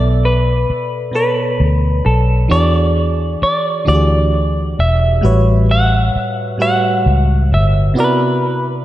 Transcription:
Already playing: B1 B2 B3 A4 D5
0.25 B4
0.70 muted fingered electric bass stroke
1.11 B2 B3 A4
1.15 B4 C#5
1.60 D2
2.06 B1 A4
2.48 E2 E3 D4 F#4 G#4 D5
2.53 D5
3.42 D5, muted fingered electric bass stroke
3.85 D2 E3 D4 F#4 G4 D5
3.89 D5
3.95 G#4
4.79 E1 E5
5.21 A1 A2 G3 F#4 B4
5.26 C#5
5.71 F#5
6.16 muted fingered electric bass stroke
6.36 E5
6.58 A2 G3 F#4 B4
6.62 C#5 F#5
7.06 C#2
7.52 G1 E5
7.94 C3 B3 E4 F#4
7.98 B4 D5

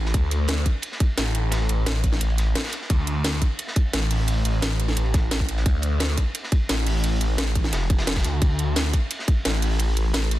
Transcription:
Already playing: A1
0.05 snare
0.14 D2, kick, closed hi-hat, ride
0.31 closed hi-hat, ride
0.48 snare, closed hi-hat, ride
0.58 snare
0.66 kick, closed hi-hat, ride
0.82 closed hi-hat, ride
0.92 snare
1.00 kick, closed hi-hat, ride
1.18 A1, snare, closed hi-hat, ride
1.35 closed hi-hat, ride
1.52 snare, closed hi-hat, ride
1.60 snare
1.69 A1, closed hi-hat, ride
1.86 snare, closed hi-hat, ride
1.95 ride
2.04 kick, closed hi-hat, ride
2.12 snare
2.21 A1, closed hi-hat, ride
2.30 ride
2.37 snare, closed hi-hat, ride
2.55 snare, closed hi-hat, ride
2.64 snare, ride
2.68 snare, ride
2.73 closed hi-hat, ride
2.81 snare
2.90 D2, kick, closed hi-hat, ride
3.07 closed hi-hat, ride
3.24 snare, closed hi-hat, ride
3.33 snare
3.42 kick, closed hi-hat, ride
3.59 closed hi-hat, ride
3.67 snare
3.76 kick, closed hi-hat, ride
3.93 A1, snare, closed hi-hat, ride
4.11 closed hi-hat, open hi-hat
4.28 closed hi-hat, ride
4.45 A1, closed hi-hat, ride
4.62 snare, closed hi-hat, ride
4.71 ride
4.80 closed hi-hat, ride
4.88 snare
4.96 A1, closed hi-hat, ride
5.06 ride
5.14 kick, snare, closed hi-hat, ride
5.31 snare, closed hi-hat
5.40 kick
5.49 closed hi-hat, ride
5.57 snare
5.66 D2, kick, closed hi-hat, ride
5.82 closed hi-hat, ride
6.00 snare, closed hi-hat, ride
6.09 snare
6.18 kick, closed hi-hat, ride
6.35 closed hi-hat, ride
6.43 snare
6.52 kick, closed hi-hat, ride
6.69 A1, snare, closed hi-hat, ride
6.87 closed hi-hat, open hi-hat
7.04 closed hi-hat, ride
7.21 A1, closed hi-hat, ride
7.38 snare, closed hi-hat, ride
7.47 ride
7.55 kick, closed hi-hat, ride
7.64 snare
7.73 F1, snare, closed hi-hat, ride
7.81 snare
7.90 kick, closed hi-hat, ride
7.98 snare, ride
8.07 snare, closed hi-hat, ride
8.11 snare, ride
8.15 kick, snare, ride
8.20 snare, ride
8.24 D2, closed hi-hat, ride
8.42 D2, kick, closed hi-hat, ride
8.59 closed hi-hat, ride
8.76 snare, closed hi-hat, ride
8.85 snare
8.93 kick, closed hi-hat, ride
9.11 closed hi-hat, ride
9.19 snare
9.28 kick, closed hi-hat, ride
9.45 A1, snare, closed hi-hat, ride
9.62 closed hi-hat, open hi-hat
9.79 closed hi-hat, ride
9.96 A1, closed hi-hat, ride
10.14 snare, closed hi-hat, ride
10.22 ride
10.31 closed hi-hat, ride

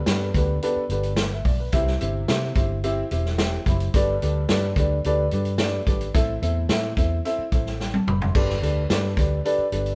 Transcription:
Already playing: G2
0.06 G2 B3 D4 G4 A4 B4, snare, closed hi-hat
0.34 D2 B3 D4 G4 A4 B4, kick, closed hi-hat
0.63 B3 D4 G4 A4 B4, closed hi-hat
0.76 muted fingered electric bass stroke
0.89 G1 B3 D4 G4 A4 B4, closed hi-hat
1.03 closed hi-hat
1.16 B4, snare, closed hi-hat
1.33 E5
1.45 B1 D5, kick, open hi-hat
1.60 B4
1.72 C2 C3 C4 E4 G4 C5 E5, kick, closed hi-hat
1.87 snare
2.01 G1 C4 E4 G4 C5 E5, closed hi-hat
2.28 C3 C4 E4 G4 C5 E5, snare, closed hi-hat
2.56 G1 C4 E4 G4 C5 E5, kick, closed hi-hat
2.84 C4 E4 G4 C5 E5, closed hi-hat
3.11 E1 C4 E4 G4 C5 E5, closed hi-hat
3.25 snare
3.38 C4 E4 G4 C5 E5 G5, snare, closed hi-hat
3.66 F#1 C4 E4 G4 C5 E5 B5, kick, closed hi-hat
3.80 closed hi-hat
3.94 G1 G2 D4 G4 A4 B4 D5, kick, closed hi-hat
4.22 D2 D4 G4 A4 B4 D5, closed hi-hat
4.49 G2 D4 G4 A4 B4 D5, snare, closed hi-hat
4.76 D2 D4 G4 A4 B4 D5, kick, closed hi-hat
5.04 D2 D4 G4 A4 B4 D5, closed hi-hat
5.31 G2 D4 G4 A4 B4 D5, closed hi-hat
5.45 closed hi-hat
5.58 D4 G4 A4 B4 D5, snare, closed hi-hat
5.87 G#1 D4 G4 A4 B4 D5, kick, closed hi-hat
6.01 closed hi-hat
6.14 A1 A2 C4 E4 A4 C5 E5, kick, closed hi-hat
6.42 E2 C4 E4 A4 C5 E5, closed hi-hat
6.69 A2 C4 E4 A4 C5 E5, snare, closed hi-hat
6.97 E2 C4 E4 A4 C5 E5, kick, closed hi-hat
7.25 C4 E4 A4 C5 E5, closed hi-hat
7.38 muted fingered electric bass stroke
7.52 A1 C4 E4 A4 C5 E5, kick, closed hi-hat
7.66 snare
7.80 G5, snare
7.94 A5, high tom
8.07 F#1 B5, mid tom
8.21 C6, floor tom
8.35 G1 G2 D4 G4 A4 B4 D5, kick, crash
8.50 snare
8.62 D2 D4 G4 A4 B4 D5, closed hi-hat
8.90 G2 D4 G4 A4 B4 D5, snare, closed hi-hat
9.17 D2 D4 G4 A4 B4 D5, kick, closed hi-hat
9.45 D4 G4 A4 B4 D5, closed hi-hat
9.58 muted fingered electric bass stroke
9.72 G1 D4 G4 A4 B4 D5, closed hi-hat
9.86 closed hi-hat

